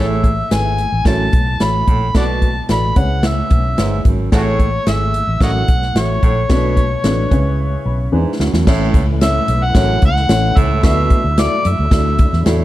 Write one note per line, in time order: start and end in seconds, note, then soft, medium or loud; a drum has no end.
0.00 0.41 A1 medium
0.00 0.35 A2 medium
0.00 0.74 A2 medium
0.00 0.26 E4 medium
0.00 0.26 G#4 medium
0.00 0.26 A4 medium
0.00 0.26 C#5 loud
0.00 0.54 E5 medium
0.24 kick medium
0.24 closed hi-hat medium
0.51 0.84 G#1 medium
0.51 0.80 E4 medium
0.51 0.80 G#4 medium
0.51 0.80 A4 medium
0.51 0.80 B4 medium
0.51 1.06 G#5 medium
0.51 snare medium
0.51 closed hi-hat medium
0.78 closed hi-hat medium
0.92 1.03 A1 medium
1.05 1.27 A1 medium
1.05 1.28 F#2 medium
1.05 1.84 A2 medium
1.05 1.35 E4 medium
1.05 1.35 F#4 medium
1.05 1.35 A4 medium
1.05 1.35 C#5 medium
1.05 1.64 A5 medium
1.05 kick medium
1.05 snare loud
1.05 closed hi-hat medium
1.33 1.55 B1 medium
1.33 kick medium
1.33 closed hi-hat medium
1.60 1.83 A1 medium
1.60 1.89 E4 medium
1.60 1.89 F#4 medium
1.60 1.89 A4 medium
1.60 1.89 C#5 medium
1.60 2.16 B5 loud
1.60 snare medium
1.60 closed hi-hat medium
1.87 2.10 A#1 medium
1.87 2.09 A2 medium
1.87 kick medium
1.87 closed hi-hat medium
2.15 2.59 B1 medium
2.15 2.53 B2 medium
2.15 2.93 B2 medium
2.15 2.44 F#4 medium
2.15 2.44 A4 medium
2.15 2.44 B4 medium
2.15 2.44 D5 medium
2.15 2.24 D5 medium
2.15 2.24 F#5 medium
2.15 2.66 A5 loud
2.15 kick medium
2.15 snare loud
2.15 closed hi-hat medium
2.42 kick medium
2.42 closed hi-hat medium
2.69 2.91 A1 medium
2.69 2.96 F#4 medium
2.69 2.97 A4 medium
2.69 2.95 B4 medium
2.69 2.97 D5 medium
2.69 3.00 B5 medium
2.69 snare medium
2.69 closed hi-hat medium
2.96 3.41 C#2 medium
2.96 3.74 C#3 medium
2.96 3.61 E4 medium
2.96 3.61 G#4 medium
2.96 3.62 B4 medium
2.96 3.62 C#5 medium
2.96 3.28 F#5 medium
2.96 kick loud
2.96 closed hi-hat medium
3.23 4.07 E5 medium
3.23 snare loud
3.23 closed hi-hat medium
3.50 3.73 B1 medium
3.50 kick medium
3.50 closed hi-hat medium
3.77 4.00 G1 medium
3.77 3.99 G#2 medium
3.77 4.07 E4 medium
3.77 4.07 G#4 medium
3.77 4.07 B4 medium
3.77 4.07 C#5 medium
3.77 snare medium
3.77 closed hi-hat medium
4.05 4.27 G#1 medium
4.05 4.27 F#2 medium
4.05 kick medium
4.05 closed hi-hat medium
4.32 4.77 A1 medium
4.32 5.10 A2 medium
4.32 4.71 A2 medium
4.32 4.61 E4 medium
4.32 4.42 F#4 medium
4.32 4.61 G#4 medium
4.32 4.61 A4 medium
4.32 4.42 A4 medium
4.32 4.61 C#5 loud
4.32 4.90 C#5 medium
4.32 kick medium
4.32 snare loud
4.32 closed hi-hat medium
4.59 kick medium
4.59 closed hi-hat medium
4.87 5.20 G#1 medium
4.87 5.16 E4 medium
4.87 5.16 G#4 medium
4.87 5.16 A4 medium
4.87 5.16 E5 medium
4.87 5.42 E5 loud
4.87 snare loud
4.87 closed hi-hat medium
5.14 closed hi-hat medium
5.27 5.39 A1 medium
5.41 5.63 A1 medium
5.41 5.63 F#2 medium
5.41 6.19 A2 medium
5.41 5.70 E4 medium
5.41 5.70 F#4 medium
5.41 5.70 A4 medium
5.41 5.70 C#5 medium
5.41 5.52 C#5 medium
5.41 5.50 D#5 medium
5.41 5.99 F#5 loud
5.41 kick medium
5.41 snare loud
5.41 closed hi-hat medium
5.68 5.91 B1 medium
5.68 kick medium
5.68 closed hi-hat medium
5.82 snare soft
5.95 6.17 A1 medium
5.95 6.24 E4 medium
5.95 6.24 F#4 medium
5.95 6.25 A4 medium
5.95 8.14 C#5 medium
5.95 6.25 E5 medium
5.95 snare loud
5.95 closed hi-hat medium
6.23 6.45 A#1 medium
6.23 6.45 A2 medium
6.23 kick medium
6.23 closed hi-hat medium
6.49 6.94 B1 loud
6.49 6.88 B2 medium
6.49 7.28 B2 medium
6.49 6.79 D4 loud
6.49 6.79 F#4 medium
6.49 6.79 A4 medium
6.49 6.79 B4 loud
6.49 kick loud
6.49 snare loud
6.49 closed hi-hat medium
6.77 kick medium
6.77 closed hi-hat medium
7.04 7.26 A1 medium
7.04 7.31 D4 medium
7.04 7.32 F#4 medium
7.04 7.32 A4 medium
7.04 7.30 B4 medium
7.04 snare loud
7.04 closed hi-hat loud
7.31 7.76 C#2 medium
7.31 8.09 C#3 medium
7.31 7.96 C#4 medium
7.31 7.96 E4 medium
7.31 7.96 G#4 medium
7.31 7.97 B4 medium
7.31 kick medium
7.31 closed hi-hat medium
7.86 8.08 B1 medium
7.86 8.11 B5 medium
8.12 8.24 E2 medium
8.12 8.35 G#2 medium
8.12 8.63 E3 medium
8.12 8.41 D4 medium
8.12 8.41 E4 medium
8.12 8.42 G#4 medium
8.12 8.42 B4 medium
8.12 8.38 G#5 medium
8.39 8.51 D2 medium
8.39 8.62 F#2 medium
8.39 8.65 F#5 medium
8.39 snare medium
8.53 8.64 E2 medium
8.53 snare medium
8.67 8.89 A1 loud
8.67 9.44 A2 medium
8.67 9.05 A2 medium
8.67 10.81 E3 medium
8.67 12.65 A3 medium
8.67 8.96 C#4 medium
8.67 10.82 C#4 medium
8.67 8.96 E4 medium
8.67 12.65 E4 medium
8.67 8.96 A4 medium
8.67 8.96 C#5 medium
8.67 8.96 E5 loud
8.67 kick loud
8.67 snare loud
8.67 crash loud
8.94 9.38 C#2 medium
8.94 kick medium
8.94 closed hi-hat medium
9.21 9.50 C#4 medium
9.21 9.50 E4 medium
9.21 9.50 A4 medium
9.21 9.50 C#5 medium
9.21 9.50 E5 medium
9.21 9.65 E5 loud
9.21 snare loud
9.21 closed hi-hat loud
9.48 9.70 B1 medium
9.48 closed hi-hat medium
9.64 10.04 F#5 loud
9.75 9.97 A1 loud
9.75 9.97 F#2 medium
9.75 10.04 C#4 medium
9.75 10.04 E4 medium
9.75 10.04 A4 medium
9.75 10.04 C#5 medium
9.75 10.04 F#5 medium
9.75 kick loud
9.75 snare loud
9.75 closed hi-hat medium
10.02 10.25 C#2 medium
10.02 10.60 F#5 loud
10.02 kick loud
10.02 closed hi-hat medium
10.16 snare soft
10.29 10.52 A1 loud
10.29 10.58 C#4 medium
10.29 10.58 E4 medium
10.29 10.58 A4 medium
10.29 10.58 C#5 medium
10.29 10.58 F#5 medium
10.29 snare loud
10.29 closed hi-hat medium
10.56 10.79 C#2 medium
10.56 10.78 A2 medium
10.56 10.85 E5 loud
10.56 kick medium
10.56 closed hi-hat medium
10.83 11.06 D2 loud
10.83 11.22 B2 medium
10.83 11.61 D3 medium
10.83 12.65 F#3 medium
10.83 12.65 D4 medium
10.83 11.12 E4 medium
10.83 11.12 F#4 medium
10.83 11.12 A4 medium
10.83 11.12 D5 medium
10.83 11.13 E5 medium
10.83 11.42 E5 loud
10.83 kick loud
10.83 snare loud
10.83 closed hi-hat medium
11.10 kick medium
11.10 closed hi-hat medium
11.24 11.46 D2 loud
11.37 11.66 E4 medium
11.37 11.66 F#4 medium
11.37 11.67 A4 medium
11.37 11.67 D5 medium
11.37 11.69 D5 medium
11.37 11.67 E5 medium
11.37 snare loud
11.37 closed hi-hat loud
11.65 11.76 F#2 medium
11.65 12.47 E5 loud
11.65 closed hi-hat medium
11.79 11.90 D2 medium
11.91 12.25 D2 medium
11.91 12.21 E4 medium
11.91 12.21 F#4 medium
11.91 12.21 A4 medium
11.91 12.21 D5 medium
11.91 12.21 E5 medium
11.91 kick medium
11.91 snare loud
11.91 closed hi-hat medium
12.18 kick loud
12.18 closed hi-hat medium
12.33 12.44 E2 medium
12.33 snare soft
12.45 12.65 E2 medium
12.45 12.65 A2 medium
12.45 12.65 E4 medium
12.45 12.65 F#4 medium
12.45 12.65 A4 medium
12.45 12.65 D5 medium
12.45 12.65 E5 medium
12.45 snare loud
12.45 closed hi-hat medium